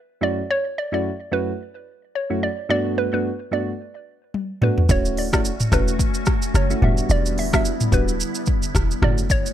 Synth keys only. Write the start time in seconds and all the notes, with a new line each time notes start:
0.21 F#2 A3 C#4 E4 F#4
0.92 F#2 A3 C#4 E4 F#4
1.31 F#2 A3 C#4 E4 F#4
2.30 F#2 A3 C#4 E4 F#4
2.69 G2 A3 B3 D4 F#4
3.12 G2 A3 B3 D4 F#4
3.51 G2 A3 B3 D4 F#4
4.61 G2 A3 B3 D4 F#4
4.89 A3 C#4 E4 F#4
5.33 A3 C#4 E4 F#4
5.72 A3 C#4 E4 F#4
6.70 A3 C#4 E4 F#4
6.82 G3 B3 D4 F#4
7.53 G3 B3 D4 F#4
7.92 G3 B3 D4 F#4
9.02 A3 C#4 E4 F#4